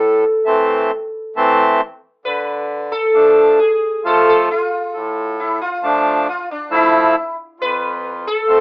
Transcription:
Already playing: A2 A4
0.45 E3 A3 C4
1.36 E3 A3 C4
2.25 D3 B4
2.92 A4
3.14 F3 A3 D4
3.59 G#4
4.04 F3 A3 F4 A4
4.29 A4
4.51 F4
4.94 A2
5.40 E4
5.61 F4
5.83 F3 A3 D4
6.29 F4
6.51 D4
6.70 F3 A3 E4
7.60 F2 B4
8.27 A4
8.47 F3 A3 C4

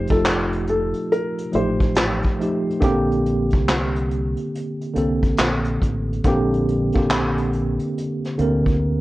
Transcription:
Already playing: F3 A3 D#4 G4
0.07 F1 F3 A3 D#4 A4, kick, closed hi-hat
0.12 F4
0.25 snare, clap, closed hi-hat
0.52 closed hi-hat
0.67 A4, closed hi-hat
0.93 closed hi-hat
1.12 A#4, closed hi-hat
1.38 closed hi-hat
1.52 A1 F3 A3 D#4 G4 C5, closed hi-hat
1.80 kick, closed hi-hat
1.95 snare, clap, closed hi-hat
2.22 kick, closed hi-hat
2.39 F3 A3 D#4 G4, closed hi-hat
2.70 closed hi-hat
2.80 A#1 D3 A#3 C4 G4, kick, closed hi-hat
3.11 closed hi-hat
3.26 closed hi-hat
3.50 C2, kick, closed hi-hat
3.68 snare, clap, closed hi-hat
3.96 closed hi-hat
4.11 closed hi-hat
4.37 closed hi-hat
4.55 closed hi-hat
4.81 closed hi-hat
4.94 C2 D3 A#3 C4 A4, closed hi-hat
5.23 kick, closed hi-hat
5.37 A#1, snare, clap, closed hi-hat
5.65 closed hi-hat
5.82 A1, kick, closed hi-hat
6.13 closed hi-hat
6.24 A#1 D3 A#3 C4, kick, closed hi-hat
6.28 G4
6.53 closed hi-hat
6.68 closed hi-hat
6.92 D3 A#3, kick, closed hi-hat
6.96 A#1 C4 G4
7.10 snare, clap, closed hi-hat
7.37 closed hi-hat
7.53 closed hi-hat
7.79 closed hi-hat
7.98 closed hi-hat
8.24 snare, closed hi-hat
8.38 D2 D3 A#3 C4 A#4, closed hi-hat
8.66 kick, closed hi-hat

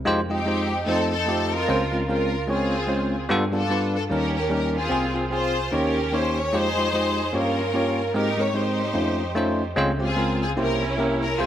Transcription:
0.05 F2 G#3 D#4 F4 G4 C5
0.29 G#3 C4 D#4 F4 G4 D#5
0.46 G#3 D#4 F4 G4 C5
0.86 F2 A3 C4 D#4 F4 A4 C5
1.11 C4 D#4 A4
1.26 A3 C4 D#4 F4 G4
1.52 F4 A#4
1.68 C#2 C#3 G#3 C4 C#4 F4 C5
1.91 G#3 C4 C#4 F4 A#4
2.08 G#3 C4 C#4 F4 A#4
2.48 G#3 C4 C#4 F4 G#4 C#5
2.88 G#3 C4 C#4 F4 C5
3.29 G2 G3 B3 D4 F4 A4
3.52 G3 B3 D4 F4 A4
3.56 A4
3.69 G3 B3 D4 F4 B4
3.96 A4
4.10 D#2 D#3 G3 A#3 C#4 D#4 G4 A#4
4.36 A#4
4.50 G3 A#3 C#4 D#4 A#4
4.75 C4 F4 G#4
4.89 C2 C3 C4 F4 G#4
5.14 C4 F4 G#4
5.31 C4 F4 G#4 C5
5.72 D#2 D#3 A#3 C#4 D#4 G4 A#4 C#5
6.12 A#3 C#4 D#4 G4 C5 C#5
6.38 C#5
6.53 F2 G#3 D#4 F4 G4 G#4 C5
6.76 G#3 D#4 F4 G4 C5
6.93 G#3 D#4 F4 G4 D#5
7.33 G2 A#3 C#4 F4 G4 A#4 C#5
7.73 A#3 C#4 F4 G4 C#5
8.14 G#2 G#3 C4 D#4 G4 A#4
8.37 G#3 C4 D#4 G4 A#4 C#5
8.54 G#3 C4 D#4 G4 C5
8.94 F2 A3 C#4 D#4 F4 C5
9.35 A3 C#4 D#4 F4 C5
9.76 C#2 C#3 G#3 C4 C#4 F4 C5
9.99 G#3 C4 C#4 F4 G4
10.04 G#4
10.16 G#3 C4 C#4 F4 A#4
10.43 G#4
10.57 C2 C3 A#3 C#4 E4 G4 A#4 C5
10.98 A#3 C#4 E4 G4 A#4
11.23 A#4
11.38 C2 C3 C4 F4 G#4 C5

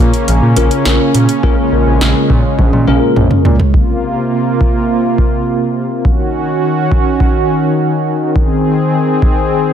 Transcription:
Already playing: C#3 A#3 C#4
0.00 A#2
0.14 closed hi-hat
0.28 A#1, closed hi-hat
0.42 A#2
0.56 A#1 A#3 C#4 F4 A#4, closed hi-hat
0.71 closed hi-hat
0.85 A#1, snare, closed hi-hat
1.15 A#2, closed hi-hat
1.29 closed hi-hat
1.43 A#1 G#3 A#3 C#4 F4 A#4, kick
1.72 A#1
1.87 A#1
2.01 A#1, snare
2.30 A#2, kick
2.59 A#1, kick, high tom
2.73 A#2, high tom
2.87 A#1 A#3 C#4 F4 A#4, mid tom
3.16 A#1, mid tom
3.31 mid tom
3.45 A#2, floor tom
3.60 floor tom
3.74 C3 A#3 F4, kick
4.61 kick
5.18 kick
6.05 D#3 C#4 F#4, kick
6.92 kick
7.20 kick
8.36 C4 G#4, kick
9.22 kick

